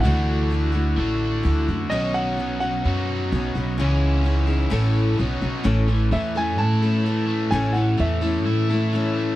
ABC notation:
X:1
M:4/4
L:1/16
Q:1/4=128
K:Alyd
V:1 name="Grand piano"
f12- f2 z2 | d2 f4 f8- f2- | f12 z4 | z4 e2 g2 a8 |
g2 f2 e8- e2 z2 |]
V:2 name="Steel-string acoustic guitar"
[=D,E,A,EF]4 [E,A,EF]2 [A,EF]6 [E,A,EF]2 [A,EF]2 | [B,,D,F,B,CF]4 [F,B,CF]2 [F,B,CF]6 [F,B,CF]2 [F,B,CF]2 | [C,E,CG]4 [E,CDG]2 [CDG]2 [A,,E,A,CEA]4 [F,B,CF]2 [F,B,CF]2 | [A,,E,A,CEA]2 [A,CEA]2 [A,CEA]2 [A,CEA]4 [A,CEA]2 [A,CEA]4 |
[A,,E,A,CEA]2 [A,CEA]2 [A,CEA]2 [A,CEA]4 [A,CEA]2 [A,CEA]4 |]
V:3 name="Overdriven electric guitar"
[=D,A,=DF]8 [D,A,DF]8 | [B,,F,B,DF]8 [B,,F,B,DF]8 | [C,E,G,CE]8 [A,,E,A,CE]4 [B,,F,B,DF]4 | A,,2 E,2 E,2 A,2 E2 A,2 E,2 A,2 |
A,,2 E,2 E,2 A,2 E2 A,2 E,2 A,2 |]
V:4 name="Upright bass" clef=bass
=D,,8 A,,,4 D,,2 F,,2 | B,,,8 F,,4 B,,,2 B,,,2 | C,,8 A,,,4 B,,,2 B,,, z | A,,,4 E,,4 A,,8 |
A,,,4 E,,4 A,,8 |]